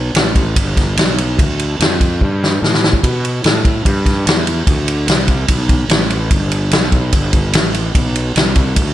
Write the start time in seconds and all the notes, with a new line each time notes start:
Already playing: B1
0.14 A1, snare, ride
0.35 kick, ride
0.56 G1, kick, ride
0.77 kick, snare, ride
0.97 B1, snare, ride
1.18 ride
1.39 D2, kick, ride
1.59 ride
1.79 F2, snare, ride
2.01 kick, ride
2.21 G2, kick
2.44 snare
2.62 A2, snare
2.74 snare
2.84 snare
2.93 kick
3.03 B2, kick, ride
3.25 ride
3.44 A2, snare, ride
3.65 kick, ride
3.85 G2, kick, ride
4.06 kick, snare, ride
4.26 E2, snare, ride
4.47 ride
4.67 D2, kick, ride
4.88 ride
5.07 C2, snare, ride
5.28 kick, ride
5.48 B1, kick, ride
5.69 kick, ride
5.89 A1, snare, ride
6.10 ride
6.31 G1, kick, ride
6.52 ride
6.71 B1, snare, ride
6.92 kick, ride
7.13 G1, kick, ride
7.33 kick, ride
7.53 A1, snare, ride
7.74 ride
7.95 B1, kick, ride
8.16 ride
8.36 C2, snare, ride
8.56 kick, ride
8.76 D2, kick, ride